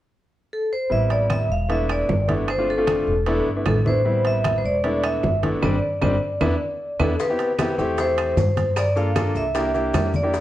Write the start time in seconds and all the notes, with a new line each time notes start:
0.53 A4
0.73 C5
0.90 A1 G3 B3 C4 E4 E5, high conga
1.10 D5, high conga, high timbale
1.30 E5, high conga, high timbale, low timbale, claves
1.49 E1 F5, high conga
1.69 A3 B3 D4 E4 E5, high conga, high timbale
1.89 D5, high conga, high timbale, claves
2.09 G1, high conga, low timbale
2.28 A3 B3 D4 E4, high conga, high timbale
2.48 C5, high conga, high timbale, claves
2.58 A3 C4 D4 F4
2.68 A4, high conga
2.77 A3 C4 D4 F4
2.87 high conga, high timbale, low timbale, claves
3.07 E1, high conga
3.26 A3 B3 D4 E4, high conga, high timbale
3.46 G1, high conga
3.56 A3 B3 D4 E4
3.66 A1 A4, high conga, high timbale, low timbale, claves
3.85 A3 B3 D4 E4 C5, high conga
4.05 G3 B3 C4 E4, high conga
4.25 E5, high conga, high timbale
4.44 high conga, high timbale, low timbale, claves
4.58 C5
4.64 E1 D5, high conga
4.84 A3 B3 D4 E4, high conga, high timbale
5.03 E5, high conga, high timbale, claves
5.23 G1, high conga, low timbale
5.42 A3 B3 D4 E4, high conga, high timbale
5.62 G1 G3 C4 D4 D5, high conga, high timbale, claves
6.01 G1 G3 C4 D4, high conga, high timbale, claves
6.41 E2 B3 D4 E4, high conga, high timbale, claves
7.00 E2 B3 D4 E4 A4, high conga, high timbale, claves
7.20 B4, high bongo, high conga, maracas
7.29 B3 C4 E4 G4
7.39 high bongo, high conga, high timbale, maracas
7.59 B3 C4 E4 G4, high bongo, high conga, high timbale, low timbale, claves, maracas
7.78 E2 A3 C4 E4 G4, high bongo, high conga, maracas
7.98 C5, high bongo, high conga, high timbale, maracas
8.18 high conga, high timbale, claves, maracas
8.37 G2, high bongo, low bongo, high conga, low timbale, maracas
8.57 high bongo, high conga, high timbale, maracas
8.76 D5, high bongo, high conga, high timbale, claves, maracas
8.96 A#3 D4 F4 A4 F5, high bongo, high conga, maracas
9.15 A#3 D4 F4 A4, high bongo, high conga, high timbale, low timbale, claves, maracas
9.35 C2 E5, high bongo, high conga, maracas
9.55 A#3 D4 E4 G4, high bongo, high conga, high timbale, maracas
9.74 A#3 D4 E4 G4, high conga, maracas
9.94 F2, high bongo, low bongo, high conga, high timbale, low timbale, claves, maracas
10.14 D5, high bongo, high conga, maracas
10.23 A#3 D4 E4 G4
10.34 high bongo, high conga, maracas